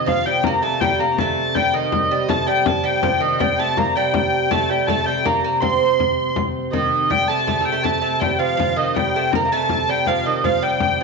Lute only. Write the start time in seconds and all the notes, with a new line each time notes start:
0.06 F3
0.27 G3
0.47 A#3
0.62 A3
0.83 G3
1.00 A#3
1.21 A3
1.56 G3
1.74 D#3
2.11 G3
2.29 A3
2.48 G3
2.84 G3
3.03 F3
3.20 D#3
3.41 G3
3.60 A3
3.78 A#3
3.97 G3
4.51 A3
4.71 G3
4.90 A3
5.04 G3 A3
5.25 A#3
5.44 A#3
5.62 C4
6.73 D#3
7.10 G3
7.30 A3
7.47 A3
7.61 A3
7.72 A3
7.84 A3
8.02 A3
8.21 G3
8.39 F3
8.57 F3
8.76 D#3
8.97 G3
9.16 A3
9.35 A#3
9.45 A#3
9.53 A3
9.89 G3
10.08 F3
10.26 D#3
10.45 F3
10.62 G3